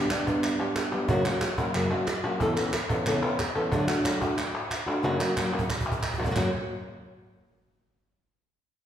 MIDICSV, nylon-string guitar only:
0, 0, Header, 1, 3, 480
1, 0, Start_track
1, 0, Tempo, 329128
1, 1593, Time_signature, 4, 2, 24, 8
1, 12910, End_track
2, 0, Start_track
2, 0, Title_t, "Nylon-string guitar"
2, 0, Program_c, 0, 24
2, 0, Note_on_c, 0, 62, 58
2, 151, Note_off_c, 0, 62, 0
2, 153, Note_on_c, 0, 55, 63
2, 163, Note_on_c, 0, 59, 62
2, 171, Note_on_c, 0, 62, 62
2, 181, Note_on_c, 0, 67, 69
2, 373, Note_off_c, 0, 67, 0
2, 385, Note_off_c, 0, 55, 0
2, 387, Note_off_c, 0, 62, 0
2, 389, Note_off_c, 0, 59, 0
2, 391, Note_on_c, 0, 67, 49
2, 404, Note_on_c, 0, 62, 59
2, 413, Note_on_c, 0, 59, 53
2, 426, Note_on_c, 0, 55, 49
2, 854, Note_off_c, 0, 67, 0
2, 864, Note_off_c, 0, 62, 0
2, 872, Note_on_c, 0, 67, 62
2, 873, Note_off_c, 0, 59, 0
2, 880, Note_off_c, 0, 55, 0
2, 881, Note_on_c, 0, 62, 45
2, 895, Note_on_c, 0, 59, 46
2, 902, Note_on_c, 0, 55, 42
2, 1325, Note_off_c, 0, 67, 0
2, 1338, Note_off_c, 0, 62, 0
2, 1343, Note_on_c, 0, 67, 52
2, 1353, Note_off_c, 0, 59, 0
2, 1356, Note_on_c, 0, 62, 51
2, 1357, Note_off_c, 0, 55, 0
2, 1368, Note_on_c, 0, 59, 47
2, 1375, Note_on_c, 0, 55, 44
2, 1577, Note_off_c, 0, 67, 0
2, 1579, Note_on_c, 0, 42, 81
2, 1584, Note_off_c, 0, 62, 0
2, 1587, Note_on_c, 0, 49, 88
2, 1589, Note_off_c, 0, 55, 0
2, 1590, Note_off_c, 0, 59, 0
2, 1595, Note_on_c, 0, 54, 85
2, 1600, Note_on_c, 0, 58, 85
2, 1603, Note_on_c, 0, 61, 87
2, 1611, Note_on_c, 0, 66, 91
2, 1808, Note_off_c, 0, 66, 0
2, 1815, Note_off_c, 0, 42, 0
2, 1819, Note_off_c, 0, 49, 0
2, 1822, Note_off_c, 0, 61, 0
2, 1823, Note_off_c, 0, 54, 0
2, 1825, Note_off_c, 0, 58, 0
2, 1826, Note_on_c, 0, 66, 61
2, 1840, Note_on_c, 0, 61, 57
2, 1852, Note_on_c, 0, 58, 49
2, 1856, Note_on_c, 0, 54, 47
2, 2058, Note_off_c, 0, 54, 0
2, 2058, Note_off_c, 0, 66, 0
2, 2065, Note_off_c, 0, 58, 0
2, 2065, Note_off_c, 0, 61, 0
2, 2307, Note_on_c, 0, 66, 57
2, 2321, Note_on_c, 0, 61, 57
2, 2333, Note_on_c, 0, 58, 50
2, 2341, Note_on_c, 0, 54, 49
2, 2538, Note_off_c, 0, 66, 0
2, 2544, Note_off_c, 0, 54, 0
2, 2545, Note_off_c, 0, 61, 0
2, 2546, Note_on_c, 0, 42, 88
2, 2551, Note_off_c, 0, 58, 0
2, 2553, Note_on_c, 0, 49, 83
2, 2562, Note_on_c, 0, 54, 92
2, 2566, Note_on_c, 0, 58, 85
2, 2571, Note_on_c, 0, 61, 85
2, 2577, Note_on_c, 0, 66, 91
2, 2772, Note_off_c, 0, 66, 0
2, 2777, Note_off_c, 0, 42, 0
2, 2781, Note_off_c, 0, 49, 0
2, 2785, Note_off_c, 0, 54, 0
2, 2785, Note_off_c, 0, 61, 0
2, 2787, Note_off_c, 0, 58, 0
2, 2789, Note_on_c, 0, 66, 53
2, 2802, Note_on_c, 0, 61, 52
2, 2816, Note_on_c, 0, 58, 50
2, 2825, Note_on_c, 0, 54, 46
2, 3019, Note_off_c, 0, 66, 0
2, 3025, Note_off_c, 0, 61, 0
2, 3031, Note_off_c, 0, 54, 0
2, 3032, Note_off_c, 0, 58, 0
2, 3267, Note_on_c, 0, 66, 62
2, 3279, Note_on_c, 0, 61, 58
2, 3291, Note_on_c, 0, 58, 52
2, 3304, Note_on_c, 0, 54, 51
2, 3497, Note_off_c, 0, 66, 0
2, 3499, Note_on_c, 0, 45, 85
2, 3503, Note_off_c, 0, 61, 0
2, 3509, Note_off_c, 0, 58, 0
2, 3510, Note_off_c, 0, 54, 0
2, 3510, Note_on_c, 0, 49, 75
2, 3516, Note_on_c, 0, 52, 80
2, 3520, Note_on_c, 0, 59, 76
2, 3527, Note_on_c, 0, 61, 83
2, 3533, Note_on_c, 0, 69, 86
2, 3719, Note_off_c, 0, 69, 0
2, 3729, Note_off_c, 0, 61, 0
2, 3733, Note_off_c, 0, 45, 0
2, 3736, Note_on_c, 0, 69, 56
2, 3739, Note_off_c, 0, 49, 0
2, 3742, Note_off_c, 0, 52, 0
2, 3744, Note_off_c, 0, 59, 0
2, 3746, Note_on_c, 0, 61, 61
2, 3764, Note_on_c, 0, 59, 57
2, 3773, Note_on_c, 0, 52, 45
2, 3971, Note_off_c, 0, 69, 0
2, 3976, Note_off_c, 0, 52, 0
2, 3976, Note_off_c, 0, 61, 0
2, 3980, Note_off_c, 0, 59, 0
2, 4231, Note_on_c, 0, 69, 53
2, 4243, Note_on_c, 0, 61, 54
2, 4254, Note_on_c, 0, 59, 51
2, 4266, Note_on_c, 0, 52, 45
2, 4455, Note_off_c, 0, 52, 0
2, 4459, Note_off_c, 0, 69, 0
2, 4459, Note_on_c, 0, 45, 76
2, 4462, Note_off_c, 0, 59, 0
2, 4464, Note_on_c, 0, 49, 78
2, 4465, Note_off_c, 0, 61, 0
2, 4473, Note_on_c, 0, 52, 78
2, 4480, Note_on_c, 0, 59, 91
2, 4489, Note_on_c, 0, 61, 91
2, 4494, Note_on_c, 0, 69, 93
2, 4686, Note_off_c, 0, 69, 0
2, 4693, Note_off_c, 0, 45, 0
2, 4695, Note_off_c, 0, 49, 0
2, 4699, Note_off_c, 0, 52, 0
2, 4700, Note_off_c, 0, 61, 0
2, 4703, Note_off_c, 0, 59, 0
2, 4703, Note_on_c, 0, 69, 53
2, 4718, Note_on_c, 0, 61, 46
2, 4729, Note_on_c, 0, 59, 48
2, 4740, Note_on_c, 0, 52, 48
2, 4934, Note_off_c, 0, 69, 0
2, 4942, Note_off_c, 0, 61, 0
2, 4947, Note_off_c, 0, 52, 0
2, 4947, Note_off_c, 0, 59, 0
2, 5189, Note_on_c, 0, 69, 65
2, 5201, Note_on_c, 0, 61, 57
2, 5211, Note_on_c, 0, 59, 45
2, 5220, Note_on_c, 0, 52, 48
2, 5417, Note_off_c, 0, 69, 0
2, 5421, Note_on_c, 0, 50, 85
2, 5423, Note_off_c, 0, 52, 0
2, 5423, Note_off_c, 0, 61, 0
2, 5428, Note_off_c, 0, 59, 0
2, 5429, Note_on_c, 0, 54, 86
2, 5441, Note_on_c, 0, 57, 86
2, 5446, Note_on_c, 0, 62, 85
2, 5451, Note_on_c, 0, 66, 91
2, 5633, Note_off_c, 0, 66, 0
2, 5650, Note_off_c, 0, 62, 0
2, 5650, Note_on_c, 0, 66, 58
2, 5653, Note_off_c, 0, 50, 0
2, 5657, Note_off_c, 0, 54, 0
2, 5664, Note_off_c, 0, 57, 0
2, 5667, Note_on_c, 0, 62, 54
2, 5684, Note_on_c, 0, 57, 47
2, 5888, Note_off_c, 0, 57, 0
2, 5888, Note_off_c, 0, 66, 0
2, 5892, Note_on_c, 0, 54, 56
2, 5897, Note_off_c, 0, 62, 0
2, 5905, Note_on_c, 0, 57, 69
2, 5916, Note_on_c, 0, 62, 69
2, 5922, Note_on_c, 0, 66, 70
2, 6126, Note_off_c, 0, 66, 0
2, 6129, Note_off_c, 0, 54, 0
2, 6135, Note_off_c, 0, 57, 0
2, 6141, Note_off_c, 0, 62, 0
2, 6143, Note_on_c, 0, 66, 55
2, 6159, Note_on_c, 0, 62, 53
2, 6174, Note_on_c, 0, 57, 46
2, 6375, Note_off_c, 0, 66, 0
2, 6378, Note_off_c, 0, 57, 0
2, 6383, Note_off_c, 0, 62, 0
2, 7095, Note_on_c, 0, 66, 50
2, 7115, Note_on_c, 0, 62, 54
2, 7131, Note_on_c, 0, 57, 53
2, 7331, Note_off_c, 0, 66, 0
2, 7335, Note_on_c, 0, 42, 84
2, 7341, Note_off_c, 0, 62, 0
2, 7341, Note_on_c, 0, 49, 82
2, 7347, Note_off_c, 0, 57, 0
2, 7348, Note_on_c, 0, 54, 79
2, 7353, Note_on_c, 0, 58, 88
2, 7360, Note_on_c, 0, 61, 85
2, 7364, Note_on_c, 0, 66, 92
2, 7553, Note_off_c, 0, 66, 0
2, 7569, Note_off_c, 0, 61, 0
2, 7570, Note_on_c, 0, 66, 62
2, 7571, Note_off_c, 0, 42, 0
2, 7574, Note_off_c, 0, 49, 0
2, 7577, Note_off_c, 0, 58, 0
2, 7578, Note_off_c, 0, 54, 0
2, 7587, Note_on_c, 0, 61, 58
2, 7594, Note_on_c, 0, 58, 49
2, 7606, Note_on_c, 0, 54, 49
2, 7804, Note_off_c, 0, 54, 0
2, 7809, Note_off_c, 0, 66, 0
2, 7817, Note_off_c, 0, 58, 0
2, 7817, Note_off_c, 0, 61, 0
2, 7822, Note_on_c, 0, 54, 65
2, 7835, Note_on_c, 0, 58, 67
2, 7846, Note_on_c, 0, 61, 64
2, 7854, Note_on_c, 0, 66, 71
2, 8039, Note_off_c, 0, 66, 0
2, 8055, Note_off_c, 0, 54, 0
2, 8055, Note_off_c, 0, 61, 0
2, 8056, Note_on_c, 0, 66, 59
2, 8062, Note_off_c, 0, 58, 0
2, 8072, Note_on_c, 0, 61, 50
2, 8085, Note_on_c, 0, 58, 51
2, 8094, Note_on_c, 0, 54, 44
2, 8293, Note_off_c, 0, 54, 0
2, 8293, Note_off_c, 0, 66, 0
2, 8299, Note_off_c, 0, 58, 0
2, 8301, Note_off_c, 0, 61, 0
2, 9017, Note_on_c, 0, 66, 58
2, 9029, Note_on_c, 0, 61, 43
2, 9041, Note_on_c, 0, 58, 45
2, 9049, Note_on_c, 0, 54, 47
2, 9062, Note_off_c, 0, 61, 0
2, 9070, Note_off_c, 0, 58, 0
2, 9071, Note_off_c, 0, 66, 0
2, 9072, Note_on_c, 0, 49, 54
2, 9078, Note_off_c, 0, 54, 0
2, 9079, Note_on_c, 0, 61, 56
2, 9089, Note_on_c, 0, 66, 50
2, 9121, Note_off_c, 0, 49, 0
2, 9132, Note_off_c, 0, 66, 0
2, 9133, Note_off_c, 0, 61, 0
2, 9138, Note_on_c, 0, 49, 67
2, 9140, Note_on_c, 0, 54, 67
2, 9148, Note_on_c, 0, 58, 64
2, 9149, Note_on_c, 0, 66, 63
2, 9151, Note_on_c, 0, 61, 64
2, 9180, Note_off_c, 0, 49, 0
2, 9190, Note_off_c, 0, 54, 0
2, 9192, Note_off_c, 0, 58, 0
2, 9197, Note_on_c, 0, 49, 69
2, 9199, Note_off_c, 0, 61, 0
2, 9200, Note_off_c, 0, 66, 0
2, 9207, Note_on_c, 0, 54, 73
2, 9210, Note_on_c, 0, 58, 73
2, 9216, Note_on_c, 0, 61, 76
2, 9217, Note_on_c, 0, 66, 77
2, 9252, Note_off_c, 0, 49, 0
2, 9257, Note_off_c, 0, 54, 0
2, 9260, Note_off_c, 0, 61, 0
2, 9261, Note_off_c, 0, 58, 0
2, 9266, Note_on_c, 0, 42, 77
2, 9269, Note_off_c, 0, 66, 0
2, 9270, Note_on_c, 0, 49, 82
2, 9275, Note_on_c, 0, 54, 77
2, 9278, Note_on_c, 0, 58, 89
2, 9278, Note_on_c, 0, 61, 96
2, 9286, Note_on_c, 0, 66, 96
2, 9460, Note_off_c, 0, 42, 0
2, 9462, Note_off_c, 0, 49, 0
2, 9465, Note_off_c, 0, 54, 0
2, 9466, Note_off_c, 0, 58, 0
2, 9466, Note_off_c, 0, 61, 0
2, 9470, Note_off_c, 0, 66, 0
2, 12910, End_track
3, 0, Start_track
3, 0, Title_t, "Muted nylon-string guitar strokes"
3, 2070, Note_on_c, 9, 29, 75
3, 2216, Note_off_c, 9, 29, 0
3, 3042, Note_on_c, 9, 29, 70
3, 3188, Note_off_c, 9, 29, 0
3, 3988, Note_on_c, 9, 29, 78
3, 4133, Note_off_c, 9, 29, 0
3, 4959, Note_on_c, 9, 29, 78
3, 5104, Note_off_c, 9, 29, 0
3, 6382, Note_on_c, 9, 29, 71
3, 6528, Note_off_c, 9, 29, 0
3, 8304, Note_on_c, 9, 29, 76
3, 8449, Note_off_c, 9, 29, 0
3, 12910, End_track
0, 0, End_of_file